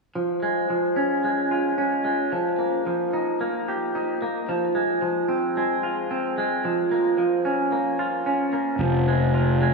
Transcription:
0.15 0.69 F3 soft
0.43 1.23 G#3 soft
0.70 2.05 F3 soft
0.96 1.77 C#4 soft
1.24 2.03 G#3 soft
1.51 2.32 F4 soft
1.78 2.32 C#4 soft
2.05 2.32 G#3 soft
2.32 2.85 F3 soft
2.59 3.40 A#3 soft
2.87 4.21 F3 soft
3.13 3.94 D#4 soft
3.41 4.21 A#3 soft
3.68 4.49 G4 soft
3.95 4.48 D#4 soft
4.22 4.48 A#3 soft
4.49 5.02 F3 soft
4.75 5.56 G#3 soft
5.02 6.64 F3 soft
5.29 6.10 C4 soft
5.57 6.37 G#3 soft
5.83 7.99 F4 soft
6.11 6.64 C4 soft
6.38 6.64 G#3 soft
6.65 7.17 F3 soft
6.91 7.71 A#3 soft
7.18 8.53 F3 soft
7.45 8.25 C#4 soft
7.72 8.52 A#3 soft
7.99 8.80 F4 soft
8.26 8.80 C#4 soft
8.53 8.80 A#3 soft
8.79 9.74 F1 soft
8.79 9.74 F3 soft
9.08 9.60 G#3 soft
9.34 9.74 F4 soft
9.62 9.74 G#3 soft

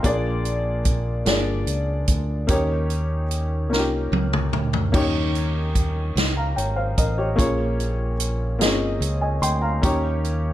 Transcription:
0.00 0.78 A#3 medium
0.00 0.79 F4 medium
0.00 0.22 G5 soft
0.00 0.22 C6 medium
0.04 1.22 A#1 medium
0.04 1.23 A#2 medium
0.04 0.79 D4 medium
0.04 0.79 G#4 medium
0.04 0.80 D5 medium
0.04 kick medium
0.04 closed hi-hat medium
0.45 closed hi-hat soft
0.85 kick medium
0.85 closed hi-hat medium
1.25 1.64 G1 medium
1.25 2.01 A#3 medium
1.25 2.01 D4 medium
1.25 2.01 F4 medium
1.25 2.02 G#4 medium
1.25 2.02 D5 medium
1.25 snare medium
1.25 closed hi-hat medium
1.67 2.04 C#2 medium
1.67 closed hi-hat soft
2.08 2.46 D2 medium
2.08 kick medium
2.08 closed hi-hat medium
2.47 3.71 D#2 medium
2.47 3.67 D#3 medium
2.47 3.23 A#3 medium
2.47 3.23 C#4 medium
2.47 3.24 D#4 medium
2.47 3.24 G4 medium
2.47 3.24 C#5 medium
2.47 kick loud
2.47 closed hi-hat medium
2.90 closed hi-hat soft
3.31 closed hi-hat medium
3.69 4.08 C2 medium
3.69 4.45 A#3 medium
3.69 4.46 C#4 medium
3.69 4.46 D#4 medium
3.69 3.78 F4 soft
3.69 4.47 A#4 medium
3.69 snare soft
3.79 4.50 G4 medium
4.12 4.49 C#2 medium
4.12 high tom medium
4.33 mid tom medium
4.53 4.90 D2 medium
4.53 mid tom medium
4.73 floor tom medium
4.92 6.12 D#2 medium
4.92 6.12 D#3 medium
4.92 5.68 A#3 medium
4.92 5.68 C#4 medium
4.92 5.69 D#4 medium
4.92 5.69 G4 medium
4.92 5.69 C#5 medium
4.92 kick loud
4.92 crash medium
5.35 closed hi-hat soft
5.75 kick medium
5.75 closed hi-hat medium
6.15 6.53 C#2 medium
6.15 snare medium
6.15 closed hi-hat medium
6.37 6.56 F5 soft
6.37 6.56 A#5 medium
6.56 6.94 G#1 medium
6.56 6.76 C#5 soft
6.56 6.76 G5 soft
6.56 closed hi-hat soft
6.76 6.96 C5 medium
6.76 6.96 F5 medium
6.98 7.35 A1 medium
6.98 7.17 A#4 medium
6.98 7.17 D#5 medium
6.98 kick medium
6.98 closed hi-hat medium
7.18 7.57 G4 medium
7.18 7.37 C#5 medium
7.36 8.60 A#1 medium
7.36 8.56 A#2 medium
7.36 8.12 A#3 medium
7.36 8.12 C#4 medium
7.36 8.13 F4 medium
7.36 8.13 G#4 medium
7.36 8.14 C#5 medium
7.36 kick medium
7.36 closed hi-hat medium
7.80 closed hi-hat soft
8.20 closed hi-hat medium
8.59 8.98 G1 medium
8.59 9.35 A#3 medium
8.59 8.67 C4 soft
8.59 9.36 F4 medium
8.59 9.36 G#4 medium
8.59 9.02 D#5 medium
8.59 snare medium
8.59 closed hi-hat medium
8.66 9.38 C#4 medium
9.00 9.39 C#2 medium
9.00 closed hi-hat medium
9.21 9.42 D#5 soft
9.21 9.41 G#5 medium
9.42 9.80 D2 medium
9.42 9.62 G5 medium
9.42 9.62 C6 medium
9.42 closed hi-hat medium
9.62 10.01 F5 medium
9.62 10.01 A#5 medium
9.81 10.53 D#2 medium
9.81 10.53 D#3 medium
9.81 10.53 A#3 medium
9.81 10.53 C#4 medium
9.81 10.53 D#4 medium
9.81 10.53 G4 medium
9.81 10.53 C#5 medium
9.81 kick medium
9.81 closed hi-hat medium
10.25 closed hi-hat soft

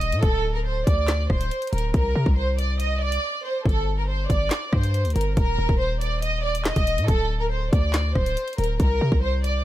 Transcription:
0.00 0.14 D#1 loud
0.00 0.20 D#5 medium
0.00 closed hi-hat medium
0.12 0.22 A#2 loud
0.12 closed hi-hat medium
0.22 0.84 D1 loud
0.22 0.53 A4 loud
0.22 kick loud
0.22 closed hi-hat medium
0.55 0.63 A#4 medium
0.65 0.82 C5 medium
0.87 1.28 D2 loud
0.87 1.27 D5 medium
0.87 kick medium
0.87 closed hi-hat medium
1.08 snare loud
1.08 clap medium
1.08 closed hi-hat medium
1.30 1.50 D1 loud
1.30 1.70 C5 medium
1.30 kick loud
1.30 cross-stick medium
1.41 closed hi-hat medium
1.51 closed hi-hat medium
1.62 closed hi-hat soft
1.67 closed hi-hat medium
1.73 1.93 D1 loud
1.73 1.89 A#4 medium
1.73 closed hi-hat medium
1.78 closed hi-hat medium
1.94 2.15 C2 loud
1.94 2.34 A#4 loud
1.94 kick loud
1.94 closed hi-hat medium
2.15 2.26 C3 loud
2.26 3.19 C2 loud
2.26 kick loud
2.37 2.53 C5 medium
2.59 2.75 D5 medium
2.59 closed hi-hat medium
2.80 2.96 D#5 medium
2.80 closed hi-hat medium
3.01 3.42 D5 medium
3.12 closed hi-hat medium
3.44 3.60 C5 medium
3.66 4.27 G1 loud
3.66 3.96 A4 loud
3.66 kick loud
3.66 closed hi-hat soft
3.98 4.06 A#4 medium
4.08 4.24 C5 medium
4.30 4.50 G1 loud
4.30 4.70 D5 medium
4.30 kick medium
4.30 closed hi-hat medium
4.50 snare loud
4.50 clap loud
4.50 closed hi-hat medium
4.73 5.06 G2 loud
4.73 5.13 C5 medium
4.73 kick medium
4.73 cross-stick medium
4.83 closed hi-hat medium
4.94 closed hi-hat medium
5.05 5.15 D2 medium
5.05 closed hi-hat soft
5.10 closed hi-hat medium
5.16 5.36 G1 loud
5.16 5.32 A#4 medium
5.16 closed hi-hat medium
5.21 closed hi-hat medium
5.37 5.58 D#1 loud
5.37 5.77 A#4 loud
5.37 kick loud
5.37 closed hi-hat medium
5.58 5.68 D#1 loud
5.69 6.72 D#1 loud
5.69 kick loud
5.80 5.96 C5 loud
6.01 6.17 D5 medium
6.01 closed hi-hat medium
6.22 6.39 D#5 medium
6.22 closed hi-hat medium
6.44 6.60 D5 medium
6.55 closed hi-hat medium
6.65 7.06 D#5 medium
6.65 snare loud
6.65 clap medium
6.76 6.99 D#1 loud
6.76 kick loud
6.76 closed hi-hat medium
6.87 closed hi-hat medium
6.98 7.08 A#2 loud
6.98 closed hi-hat medium
7.08 7.70 D1 loud
7.08 7.39 A4 loud
7.08 kick loud
7.08 closed hi-hat medium
7.40 7.48 A#4 medium
7.51 7.67 C5 medium
7.73 8.14 D2 loud
7.73 8.13 D5 medium
7.73 kick loud
7.73 closed hi-hat medium
7.93 snare loud
7.93 clap medium
7.93 closed hi-hat medium
8.15 8.36 D1 loud
8.15 8.56 C5 medium
8.15 kick medium
8.15 cross-stick medium
8.26 closed hi-hat medium
8.37 closed hi-hat medium
8.48 closed hi-hat soft
8.53 closed hi-hat medium
8.58 8.79 D1 loud
8.58 8.75 A#4 medium
8.58 closed hi-hat medium
8.64 closed hi-hat medium
8.80 9.00 C2 loud
8.80 9.20 A#4 loud
8.80 kick loud
8.80 closed hi-hat medium
9.01 9.11 C3 loud
9.12 9.63 C2 loud
9.12 kick loud
9.23 9.39 C5 loud
9.44 9.60 D5 medium
9.44 closed hi-hat medium

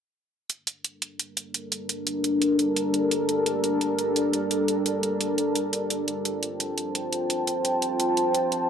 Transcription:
0.50 6.04 G3 medium
0.50 6.04 D4 medium
0.50 6.04 A4 medium
0.50 6.04 A#4 medium
0.50 closed hi-hat medium
0.67 closed hi-hat medium
0.84 closed hi-hat medium
1.02 closed hi-hat medium
1.19 closed hi-hat medium
1.37 closed hi-hat loud
1.54 closed hi-hat medium
1.72 closed hi-hat medium
1.89 closed hi-hat medium
2.07 closed hi-hat medium
2.24 closed hi-hat medium
2.42 closed hi-hat medium
2.59 closed hi-hat medium
2.76 closed hi-hat loud
2.94 closed hi-hat medium
3.11 closed hi-hat medium
3.29 closed hi-hat medium
3.46 closed hi-hat medium
3.64 closed hi-hat medium
3.81 closed hi-hat medium
3.99 closed hi-hat medium
4.16 closed hi-hat medium
4.33 closed hi-hat medium
4.51 closed hi-hat loud
4.68 closed hi-hat medium
4.86 closed hi-hat medium
5.03 closed hi-hat medium
5.21 closed hi-hat medium
5.38 closed hi-hat medium
5.55 closed hi-hat medium
5.73 closed hi-hat medium
5.90 closed hi-hat medium
6.08 8.70 F4 medium
6.08 8.70 C5 medium
6.08 8.70 G5 medium
6.08 8.70 A5 medium
6.08 closed hi-hat medium
6.25 closed hi-hat medium
6.43 closed hi-hat medium
6.60 closed hi-hat medium
6.78 closed hi-hat medium
6.95 closed hi-hat medium
7.13 closed hi-hat medium
7.30 closed hi-hat medium
7.47 closed hi-hat medium
7.65 closed hi-hat medium
7.82 closed hi-hat medium
8.00 closed hi-hat medium
8.17 closed hi-hat medium
8.35 closed hi-hat medium
8.52 closed hi-hat medium

